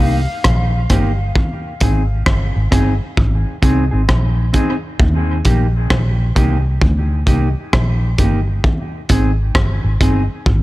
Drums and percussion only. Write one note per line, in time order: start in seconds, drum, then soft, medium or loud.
0.44 kick loud
0.44 cross-stick loud
0.44 hi-hat pedal medium
0.90 kick medium
0.90 cross-stick medium
0.90 closed hi-hat medium
1.35 kick loud
1.80 kick medium
1.80 closed hi-hat medium
2.26 kick loud
2.26 cross-stick loud
2.72 kick medium
2.72 cross-stick medium
2.72 closed hi-hat medium
3.17 kick loud
3.63 kick medium
3.63 closed hi-hat medium
4.09 kick loud
4.09 cross-stick loud
4.54 kick medium
4.54 closed hi-hat medium
5.00 kick loud
5.45 kick medium
5.45 closed hi-hat medium
5.90 kick loud
5.90 cross-stick loud
6.36 kick medium
6.36 closed hi-hat medium
6.82 kick loud
7.27 kick medium
7.27 closed hi-hat medium
7.73 kick loud
7.73 cross-stick loud
8.18 kick medium
8.18 closed hi-hat medium
8.64 kick loud
9.09 kick medium
9.09 closed hi-hat medium
9.55 kick loud
9.55 cross-stick loud
10.01 kick medium
10.01 closed hi-hat medium
10.46 kick loud